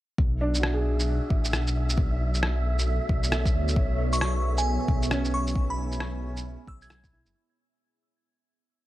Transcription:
0.18 detuned saw bass B1, synth texture E5, kick
0.41 upright piano D4
0.55 shaker
0.60 upright piano F#4, cross-stick
0.74 upright piano G#4
1.00 shaker
1.30 detuned saw bass A1, kick
1.45 shaker
1.53 detuned saw bass B1, cross-stick, shaker
1.67 shaker
1.90 shaker
1.98 detuned saw bass B1, ambient pad B3, kick
2.17 ambient pad F#4 A4
2.25 ambient pad C#5
2.34 shaker
2.43 cross-stick
2.52 ambient pad D5
2.79 shaker
3.09 detuned saw bass B1, kick
3.23 shaker
3.32 cross-stick, shaker
3.46 kick, shaker
3.54 detuned saw bass D2
3.68 shaker
3.76 detuned saw bass B1, kick
3.88 ambient pad G#4
4.13 synth bell C#6, shaker
4.19 ambient pad E5 G#5, synth bell C#6, cross-stick
4.58 synth bell G#5, shaker
4.88 detuned saw bass B1, kick
5.03 shaker
5.11 detuned saw bass B1, upright piano C#4, cross-stick, shaker
5.25 shaker
5.34 synth bell C#6
5.47 shaker
5.56 detuned saw bass B1, kick
5.70 synth bell B5
5.92 shaker
6.00 cross-stick
6.37 shaker
6.67 detuned saw bass B1, synth bell E6, kick
6.82 synth bell G#6, shaker
6.90 cross-stick, shaker
7.04 kick, shaker
7.13 upright piano E4
7.26 detuned saw bass F#1, shaker

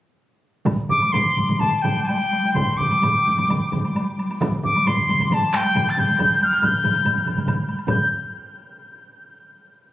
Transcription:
0.65 taiko, taiko low-mid, taiko mid, taiko high, high woodblock
0.89 piccolo D6, taiko low-mid, taiko mid, high woodblock
1.02 taiko high, high woodblock
1.12 piccolo C6, taiko, taiko low-mid, taiko mid, taiko high, high woodblock
1.36 taiko low-mid, taiko mid, taiko high, high woodblock
1.49 taiko low-mid, taiko mid, taiko high, high woodblock
1.60 piccolo A5, taiko low-mid, taiko mid, taiko high, high woodblock
1.82 piccolo G5, taiko, taiko low-mid, taiko mid, taiko high, high woodblock
1.96 taiko high, high woodblock
2.03 piccolo A5
2.07 piccolo G5, taiko high, high woodblock
2.32 taiko high, high woodblock
2.44 taiko high, high woodblock
2.54 piccolo C6, taiko, taiko low-mid, taiko mid, taiko high, high woodblock
2.77 piccolo D6, taiko low-mid, taiko mid, high woodblock
2.91 taiko high, high woodblock
3.02 taiko, taiko low-mid, taiko mid, taiko high, high woodblock
3.26 taiko low-mid, taiko mid, taiko high
3.37 taiko low-mid, taiko mid, taiko high, high woodblock
3.48 taiko low-mid, taiko mid, taiko high, high woodblock
3.72 taiko low-mid, taiko mid, taiko high, high woodblock
3.83 taiko high, high woodblock
3.95 taiko high, high woodblock
4.18 taiko high, high woodblock
4.30 taiko high, high woodblock
4.41 taiko, taiko low-mid, taiko mid, taiko high, high woodblock
4.63 piccolo D6, taiko low-mid, taiko mid
4.76 taiko high, high woodblock
4.86 piccolo C6, taiko, taiko low-mid, taiko mid, taiko high, high woodblock
4.97 taiko low-mid, taiko mid
5.08 taiko low-mid, taiko mid, taiko high, high woodblock
5.20 taiko low-mid, taiko mid, taiko high, high woodblock
5.31 piccolo A5, taiko low-mid, taiko mid, taiko high, high woodblock
5.53 piccolo G5, taiko rim, taiko high, high woodblock
5.65 taiko high, high woodblock
5.75 taiko low-mid, taiko mid, taiko high, high woodblock
5.90 piccolo A6
5.97 piccolo G6, taiko low-mid, taiko mid, taiko high, high woodblock
6.09 taiko high, high woodblock
6.19 taiko, taiko low-mid, taiko mid, taiko high, high woodblock
6.41 piccolo F6, taiko high, high woodblock
6.52 taiko high, high woodblock
6.62 piccolo G6, taiko, taiko low-mid, taiko mid, taiko high, high woodblock
6.84 taiko low-mid, taiko mid, taiko high, high woodblock
6.94 taiko high, high woodblock
7.05 taiko low-mid, taiko mid, taiko high, high woodblock
7.14 taiko low-mid, taiko mid
7.25 taiko, taiko low-mid, taiko mid, high woodblock
7.36 taiko low-mid, taiko mid, taiko high, high woodblock
7.47 taiko low-mid, taiko mid, taiko high, high woodblock
7.67 taiko high, high woodblock
7.79 high woodblock
7.87 piccolo G6, taiko, taiko low-mid, taiko mid, taiko high, high woodblock

